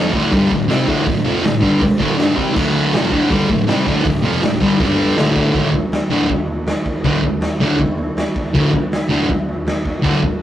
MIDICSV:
0, 0, Header, 1, 4, 480
1, 0, Start_track
1, 0, Tempo, 374065
1, 1367, Time_signature, 4, 2, 24, 8
1, 13372, End_track
2, 0, Start_track
2, 0, Title_t, "Distorted electric guitar"
2, 0, Program_c, 0, 30
2, 0, Note_on_c, 0, 41, 87
2, 0, Note_on_c, 0, 48, 96
2, 0, Note_on_c, 0, 53, 102
2, 159, Note_off_c, 0, 41, 0
2, 161, Note_off_c, 0, 48, 0
2, 165, Note_on_c, 0, 38, 87
2, 167, Note_off_c, 0, 53, 0
2, 181, Note_on_c, 0, 45, 95
2, 193, Note_on_c, 0, 50, 91
2, 398, Note_off_c, 0, 38, 0
2, 406, Note_off_c, 0, 45, 0
2, 412, Note_off_c, 0, 50, 0
2, 414, Note_on_c, 0, 43, 87
2, 433, Note_on_c, 0, 50, 93
2, 434, Note_on_c, 0, 55, 115
2, 643, Note_off_c, 0, 43, 0
2, 653, Note_off_c, 0, 50, 0
2, 653, Note_off_c, 0, 55, 0
2, 658, Note_on_c, 0, 38, 65
2, 667, Note_on_c, 0, 45, 67
2, 844, Note_off_c, 0, 38, 0
2, 849, Note_off_c, 0, 45, 0
2, 882, Note_on_c, 0, 48, 85
2, 896, Note_on_c, 0, 55, 94
2, 905, Note_on_c, 0, 60, 109
2, 1113, Note_off_c, 0, 48, 0
2, 1118, Note_on_c, 0, 38, 90
2, 1124, Note_off_c, 0, 55, 0
2, 1129, Note_off_c, 0, 60, 0
2, 1132, Note_on_c, 0, 45, 89
2, 1145, Note_on_c, 0, 50, 94
2, 1341, Note_off_c, 0, 38, 0
2, 1351, Note_off_c, 0, 45, 0
2, 1356, Note_on_c, 0, 38, 68
2, 1366, Note_on_c, 0, 45, 69
2, 1368, Note_off_c, 0, 50, 0
2, 1553, Note_off_c, 0, 38, 0
2, 1558, Note_off_c, 0, 45, 0
2, 1596, Note_on_c, 0, 41, 93
2, 1601, Note_on_c, 0, 48, 102
2, 1613, Note_on_c, 0, 53, 92
2, 1834, Note_off_c, 0, 41, 0
2, 1836, Note_off_c, 0, 48, 0
2, 1839, Note_on_c, 0, 38, 67
2, 1842, Note_off_c, 0, 53, 0
2, 1847, Note_on_c, 0, 45, 77
2, 2035, Note_off_c, 0, 38, 0
2, 2038, Note_off_c, 0, 45, 0
2, 2064, Note_on_c, 0, 43, 88
2, 2077, Note_on_c, 0, 50, 94
2, 2089, Note_on_c, 0, 55, 106
2, 2308, Note_off_c, 0, 43, 0
2, 2314, Note_off_c, 0, 50, 0
2, 2320, Note_off_c, 0, 55, 0
2, 2546, Note_on_c, 0, 38, 94
2, 2566, Note_on_c, 0, 45, 100
2, 2573, Note_on_c, 0, 50, 102
2, 2779, Note_off_c, 0, 38, 0
2, 2782, Note_off_c, 0, 50, 0
2, 2784, Note_on_c, 0, 43, 89
2, 2793, Note_off_c, 0, 45, 0
2, 2798, Note_on_c, 0, 50, 105
2, 2812, Note_on_c, 0, 55, 104
2, 3014, Note_off_c, 0, 43, 0
2, 3019, Note_off_c, 0, 55, 0
2, 3019, Note_on_c, 0, 48, 85
2, 3030, Note_off_c, 0, 50, 0
2, 3035, Note_on_c, 0, 55, 97
2, 3041, Note_on_c, 0, 60, 108
2, 3260, Note_off_c, 0, 48, 0
2, 3265, Note_on_c, 0, 38, 94
2, 3272, Note_off_c, 0, 55, 0
2, 3276, Note_off_c, 0, 60, 0
2, 3277, Note_on_c, 0, 45, 89
2, 3290, Note_on_c, 0, 50, 109
2, 3747, Note_off_c, 0, 38, 0
2, 3753, Note_off_c, 0, 45, 0
2, 3760, Note_off_c, 0, 50, 0
2, 3768, Note_on_c, 0, 41, 89
2, 3777, Note_on_c, 0, 48, 91
2, 3787, Note_on_c, 0, 53, 100
2, 3985, Note_off_c, 0, 41, 0
2, 3991, Note_on_c, 0, 38, 89
2, 4000, Note_off_c, 0, 48, 0
2, 4005, Note_on_c, 0, 45, 95
2, 4008, Note_off_c, 0, 53, 0
2, 4013, Note_on_c, 0, 50, 101
2, 4224, Note_off_c, 0, 38, 0
2, 4224, Note_off_c, 0, 50, 0
2, 4229, Note_on_c, 0, 43, 90
2, 4234, Note_off_c, 0, 45, 0
2, 4240, Note_on_c, 0, 50, 105
2, 4254, Note_on_c, 0, 55, 99
2, 4469, Note_off_c, 0, 43, 0
2, 4474, Note_off_c, 0, 50, 0
2, 4480, Note_on_c, 0, 38, 64
2, 4480, Note_on_c, 0, 45, 70
2, 4481, Note_off_c, 0, 55, 0
2, 4673, Note_off_c, 0, 38, 0
2, 4673, Note_off_c, 0, 45, 0
2, 4709, Note_on_c, 0, 48, 101
2, 4729, Note_on_c, 0, 55, 87
2, 4735, Note_on_c, 0, 60, 106
2, 4945, Note_off_c, 0, 48, 0
2, 4950, Note_on_c, 0, 38, 96
2, 4958, Note_off_c, 0, 55, 0
2, 4961, Note_off_c, 0, 60, 0
2, 4969, Note_on_c, 0, 45, 90
2, 4979, Note_on_c, 0, 50, 106
2, 5183, Note_off_c, 0, 38, 0
2, 5191, Note_off_c, 0, 45, 0
2, 5198, Note_on_c, 0, 38, 60
2, 5203, Note_off_c, 0, 50, 0
2, 5206, Note_on_c, 0, 45, 70
2, 5392, Note_off_c, 0, 38, 0
2, 5396, Note_off_c, 0, 45, 0
2, 5427, Note_on_c, 0, 41, 86
2, 5445, Note_on_c, 0, 48, 90
2, 5455, Note_on_c, 0, 53, 110
2, 5661, Note_off_c, 0, 41, 0
2, 5666, Note_on_c, 0, 38, 65
2, 5670, Note_off_c, 0, 48, 0
2, 5675, Note_on_c, 0, 45, 70
2, 5680, Note_off_c, 0, 53, 0
2, 5865, Note_off_c, 0, 38, 0
2, 5870, Note_off_c, 0, 45, 0
2, 5911, Note_on_c, 0, 43, 90
2, 5926, Note_on_c, 0, 50, 89
2, 5932, Note_on_c, 0, 55, 95
2, 6131, Note_off_c, 0, 43, 0
2, 6146, Note_on_c, 0, 43, 86
2, 6149, Note_off_c, 0, 50, 0
2, 6159, Note_off_c, 0, 55, 0
2, 6164, Note_on_c, 0, 50, 94
2, 6172, Note_on_c, 0, 55, 92
2, 6625, Note_off_c, 0, 43, 0
2, 6635, Note_off_c, 0, 50, 0
2, 6638, Note_off_c, 0, 55, 0
2, 6642, Note_on_c, 0, 38, 98
2, 6646, Note_on_c, 0, 45, 92
2, 6667, Note_on_c, 0, 50, 100
2, 7080, Note_off_c, 0, 38, 0
2, 7095, Note_off_c, 0, 45, 0
2, 7096, Note_on_c, 0, 38, 93
2, 7104, Note_off_c, 0, 50, 0
2, 7111, Note_on_c, 0, 45, 87
2, 7119, Note_on_c, 0, 50, 89
2, 7299, Note_off_c, 0, 38, 0
2, 7307, Note_off_c, 0, 45, 0
2, 7311, Note_off_c, 0, 50, 0
2, 7829, Note_on_c, 0, 38, 88
2, 7838, Note_on_c, 0, 45, 90
2, 7851, Note_on_c, 0, 50, 98
2, 8026, Note_off_c, 0, 38, 0
2, 8031, Note_off_c, 0, 45, 0
2, 8037, Note_off_c, 0, 50, 0
2, 9036, Note_on_c, 0, 38, 89
2, 9046, Note_on_c, 0, 45, 92
2, 9062, Note_on_c, 0, 50, 91
2, 9230, Note_off_c, 0, 38, 0
2, 9235, Note_off_c, 0, 45, 0
2, 9243, Note_off_c, 0, 50, 0
2, 9756, Note_on_c, 0, 38, 87
2, 9764, Note_on_c, 0, 45, 89
2, 9786, Note_on_c, 0, 50, 88
2, 9950, Note_off_c, 0, 38, 0
2, 9954, Note_off_c, 0, 45, 0
2, 9965, Note_off_c, 0, 50, 0
2, 10966, Note_on_c, 0, 38, 99
2, 10980, Note_on_c, 0, 45, 99
2, 10983, Note_on_c, 0, 50, 90
2, 11155, Note_off_c, 0, 38, 0
2, 11163, Note_off_c, 0, 45, 0
2, 11164, Note_off_c, 0, 50, 0
2, 11666, Note_on_c, 0, 38, 89
2, 11680, Note_on_c, 0, 45, 92
2, 11687, Note_on_c, 0, 50, 95
2, 11866, Note_off_c, 0, 38, 0
2, 11873, Note_off_c, 0, 45, 0
2, 11877, Note_off_c, 0, 50, 0
2, 12859, Note_on_c, 0, 38, 92
2, 12874, Note_on_c, 0, 45, 104
2, 12888, Note_on_c, 0, 50, 104
2, 13063, Note_off_c, 0, 38, 0
2, 13070, Note_off_c, 0, 45, 0
2, 13077, Note_off_c, 0, 50, 0
2, 13372, End_track
3, 0, Start_track
3, 0, Title_t, "Muted distorted electric guitar strokes"
3, 2314, Note_on_c, 9, 29, 62
3, 2442, Note_off_c, 9, 29, 0
3, 13372, End_track
4, 0, Start_track
4, 0, Title_t, "Drums"
4, 171, Note_on_c, 9, 36, 82
4, 299, Note_off_c, 9, 36, 0
4, 407, Note_on_c, 9, 46, 58
4, 413, Note_on_c, 9, 36, 111
4, 535, Note_off_c, 9, 46, 0
4, 541, Note_off_c, 9, 36, 0
4, 653, Note_on_c, 9, 36, 80
4, 782, Note_off_c, 9, 36, 0
4, 895, Note_on_c, 9, 46, 64
4, 908, Note_on_c, 9, 38, 107
4, 1023, Note_off_c, 9, 46, 0
4, 1036, Note_off_c, 9, 38, 0
4, 1130, Note_on_c, 9, 36, 81
4, 1259, Note_off_c, 9, 36, 0
4, 1369, Note_on_c, 9, 36, 113
4, 1370, Note_on_c, 9, 46, 63
4, 1497, Note_off_c, 9, 36, 0
4, 1498, Note_off_c, 9, 46, 0
4, 1853, Note_on_c, 9, 46, 63
4, 1865, Note_on_c, 9, 38, 116
4, 1981, Note_off_c, 9, 46, 0
4, 1994, Note_off_c, 9, 38, 0
4, 2086, Note_on_c, 9, 36, 82
4, 2214, Note_off_c, 9, 36, 0
4, 2323, Note_on_c, 9, 46, 61
4, 2326, Note_on_c, 9, 36, 108
4, 2452, Note_off_c, 9, 46, 0
4, 2454, Note_off_c, 9, 36, 0
4, 2569, Note_on_c, 9, 36, 79
4, 2697, Note_off_c, 9, 36, 0
4, 2808, Note_on_c, 9, 46, 60
4, 2821, Note_on_c, 9, 38, 114
4, 2936, Note_off_c, 9, 46, 0
4, 2949, Note_off_c, 9, 38, 0
4, 3046, Note_on_c, 9, 36, 79
4, 3174, Note_off_c, 9, 36, 0
4, 3285, Note_on_c, 9, 49, 102
4, 3287, Note_on_c, 9, 36, 107
4, 3413, Note_off_c, 9, 49, 0
4, 3415, Note_off_c, 9, 36, 0
4, 3766, Note_on_c, 9, 46, 58
4, 3779, Note_on_c, 9, 38, 112
4, 3894, Note_off_c, 9, 46, 0
4, 3907, Note_off_c, 9, 38, 0
4, 4002, Note_on_c, 9, 36, 86
4, 4130, Note_off_c, 9, 36, 0
4, 4242, Note_on_c, 9, 36, 110
4, 4246, Note_on_c, 9, 46, 60
4, 4370, Note_off_c, 9, 36, 0
4, 4374, Note_off_c, 9, 46, 0
4, 4483, Note_on_c, 9, 36, 82
4, 4611, Note_off_c, 9, 36, 0
4, 4720, Note_on_c, 9, 46, 57
4, 4733, Note_on_c, 9, 38, 118
4, 4849, Note_off_c, 9, 46, 0
4, 4861, Note_off_c, 9, 38, 0
4, 4962, Note_on_c, 9, 36, 82
4, 5090, Note_off_c, 9, 36, 0
4, 5199, Note_on_c, 9, 36, 113
4, 5199, Note_on_c, 9, 46, 60
4, 5327, Note_off_c, 9, 36, 0
4, 5327, Note_off_c, 9, 46, 0
4, 5675, Note_on_c, 9, 46, 63
4, 5688, Note_on_c, 9, 38, 110
4, 5803, Note_off_c, 9, 46, 0
4, 5816, Note_off_c, 9, 38, 0
4, 5918, Note_on_c, 9, 36, 88
4, 6047, Note_off_c, 9, 36, 0
4, 6157, Note_on_c, 9, 46, 63
4, 6159, Note_on_c, 9, 36, 115
4, 6285, Note_off_c, 9, 46, 0
4, 6287, Note_off_c, 9, 36, 0
4, 6636, Note_on_c, 9, 46, 60
4, 6648, Note_on_c, 9, 38, 107
4, 6764, Note_off_c, 9, 46, 0
4, 6777, Note_off_c, 9, 38, 0
4, 6879, Note_on_c, 9, 36, 83
4, 7007, Note_off_c, 9, 36, 0
4, 7117, Note_on_c, 9, 43, 78
4, 7118, Note_on_c, 9, 36, 106
4, 7245, Note_off_c, 9, 43, 0
4, 7246, Note_off_c, 9, 36, 0
4, 7354, Note_on_c, 9, 43, 59
4, 7358, Note_on_c, 9, 36, 80
4, 7482, Note_off_c, 9, 43, 0
4, 7486, Note_off_c, 9, 36, 0
4, 7599, Note_on_c, 9, 43, 79
4, 7612, Note_on_c, 9, 38, 114
4, 7727, Note_off_c, 9, 43, 0
4, 7740, Note_off_c, 9, 38, 0
4, 7829, Note_on_c, 9, 43, 58
4, 7958, Note_off_c, 9, 43, 0
4, 8079, Note_on_c, 9, 43, 78
4, 8080, Note_on_c, 9, 36, 109
4, 8207, Note_off_c, 9, 43, 0
4, 8208, Note_off_c, 9, 36, 0
4, 8316, Note_on_c, 9, 43, 59
4, 8444, Note_off_c, 9, 43, 0
4, 8554, Note_on_c, 9, 43, 84
4, 8567, Note_on_c, 9, 38, 112
4, 8682, Note_off_c, 9, 43, 0
4, 8695, Note_off_c, 9, 38, 0
4, 8799, Note_on_c, 9, 43, 66
4, 8801, Note_on_c, 9, 36, 83
4, 8927, Note_off_c, 9, 43, 0
4, 8929, Note_off_c, 9, 36, 0
4, 9035, Note_on_c, 9, 43, 85
4, 9041, Note_on_c, 9, 36, 112
4, 9163, Note_off_c, 9, 43, 0
4, 9169, Note_off_c, 9, 36, 0
4, 9267, Note_on_c, 9, 43, 65
4, 9278, Note_on_c, 9, 36, 80
4, 9395, Note_off_c, 9, 43, 0
4, 9407, Note_off_c, 9, 36, 0
4, 9509, Note_on_c, 9, 43, 92
4, 9522, Note_on_c, 9, 38, 106
4, 9638, Note_off_c, 9, 43, 0
4, 9650, Note_off_c, 9, 38, 0
4, 9757, Note_on_c, 9, 43, 60
4, 9885, Note_off_c, 9, 43, 0
4, 10002, Note_on_c, 9, 43, 81
4, 10003, Note_on_c, 9, 36, 108
4, 10130, Note_off_c, 9, 43, 0
4, 10132, Note_off_c, 9, 36, 0
4, 10241, Note_on_c, 9, 43, 62
4, 10370, Note_off_c, 9, 43, 0
4, 10483, Note_on_c, 9, 43, 86
4, 10495, Note_on_c, 9, 38, 109
4, 10611, Note_off_c, 9, 43, 0
4, 10624, Note_off_c, 9, 38, 0
4, 10727, Note_on_c, 9, 36, 85
4, 10728, Note_on_c, 9, 43, 59
4, 10856, Note_off_c, 9, 36, 0
4, 10856, Note_off_c, 9, 43, 0
4, 10968, Note_on_c, 9, 36, 108
4, 10970, Note_on_c, 9, 43, 75
4, 11097, Note_off_c, 9, 36, 0
4, 11099, Note_off_c, 9, 43, 0
4, 11209, Note_on_c, 9, 36, 86
4, 11210, Note_on_c, 9, 43, 61
4, 11338, Note_off_c, 9, 36, 0
4, 11339, Note_off_c, 9, 43, 0
4, 11447, Note_on_c, 9, 43, 76
4, 11460, Note_on_c, 9, 38, 112
4, 11575, Note_off_c, 9, 43, 0
4, 11588, Note_off_c, 9, 38, 0
4, 11690, Note_on_c, 9, 43, 54
4, 11819, Note_off_c, 9, 43, 0
4, 11928, Note_on_c, 9, 36, 105
4, 11929, Note_on_c, 9, 43, 79
4, 12056, Note_off_c, 9, 36, 0
4, 12057, Note_off_c, 9, 43, 0
4, 12176, Note_on_c, 9, 43, 60
4, 12304, Note_off_c, 9, 43, 0
4, 12404, Note_on_c, 9, 43, 81
4, 12417, Note_on_c, 9, 38, 107
4, 12532, Note_off_c, 9, 43, 0
4, 12545, Note_off_c, 9, 38, 0
4, 12645, Note_on_c, 9, 36, 79
4, 12646, Note_on_c, 9, 43, 58
4, 12773, Note_off_c, 9, 36, 0
4, 12775, Note_off_c, 9, 43, 0
4, 12887, Note_on_c, 9, 36, 108
4, 12891, Note_on_c, 9, 43, 83
4, 13015, Note_off_c, 9, 36, 0
4, 13020, Note_off_c, 9, 43, 0
4, 13125, Note_on_c, 9, 36, 86
4, 13129, Note_on_c, 9, 43, 64
4, 13253, Note_off_c, 9, 36, 0
4, 13257, Note_off_c, 9, 43, 0
4, 13372, End_track
0, 0, End_of_file